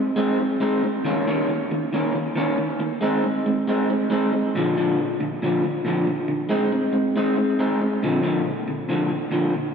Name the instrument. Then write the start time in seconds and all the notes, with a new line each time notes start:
clean electric guitar
Already playing: G#3 C4
0.16 G#3 C4 D#4
0.39 G#3 C4
0.60 G#3 C4 D#4
0.83 G#3 C4
1.05 D#3 A#3 C#4
1.27 D#3 A#3 C#4
1.49 D#3 A#3
1.71 D#3 A#3
1.93 D#3 A#3 C#4
2.15 D#3 A#3
2.36 D#3 A#3 C#4
2.58 D#3 A#3
2.80 D#3 A#3
3.01 G#3 C4 D#4
3.24 G#3 C4
3.46 G#3 C4
3.67 G#3 C4 D#4
3.90 G#3 C4
4.10 G#3 C4 D#4
4.33 G#3 C4
4.55 A#2 D3 F3
4.76 A#2 D3 F3
4.99 A#2 D3
5.20 A#2 D3
5.42 A#2 D3 F3
5.64 A#2 D3
5.85 A#2 D3 F3
6.07 A#2 D3
6.28 A#2 D3
6.49 G#3 C4 D#4
6.72 G#3 C4
6.93 G#3 C4
7.16 G#3 C4 D#4
7.36 G#3 C4
7.59 G#3 C4 D#4
7.80 G#3 C4
8.03 A#2 D3 F3
8.23 A#2 D3 F3
8.45 A#2 D3
8.68 A#2 D3
8.89 A#2 D3 F3
9.09 A#2 D3
9.31 A#2 D3 F3
9.54 A#2 D3